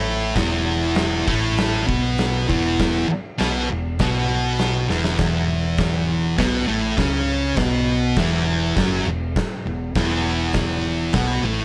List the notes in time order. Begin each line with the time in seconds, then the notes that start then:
Already playing: A1 A2 A3
0.35 E1 E2 E3, kick, snare, crash
0.95 snare, crash
1.27 A1 A2 A3, kick
1.57 snare, crash
1.87 B1 B2 B3, kick
2.18 snare, crash
2.47 E1 E2 E3, kick
2.79 kick, snare, crash
3.08 muted distorted electric guitar stroke, muted fingered electric bass stroke
3.38 B1 B2 B3, snare, crash
3.71 E1 E2
3.99 B1 B2 B3, kick, snare, crash
4.58 snare, crash
4.88 E1 E2 E3, snare
5.04 snare
5.18 E1 E2 E3, kick, snare, crash
5.78 kick, snare, crash
6.37 B1 B2 B3, kick, snare, crash
6.67 A1 A2 A3
6.97 C#2 C#3 C#4, kick, snare, crash
7.56 B1 B2 B3, kick, snare, crash
8.16 E1 E2 E3, kick, snare, crash
8.76 F#1 F#2 F#3, kick, snare, crash
9.05 E1 E2
9.36 kick, snare, crash
9.65 E1 E2
9.95 E1 E2 E3, kick, snare, crash
10.53 kick, snare, crash
11.13 B1 B2 B3, kick, snare, crash
11.43 A1 A2 A3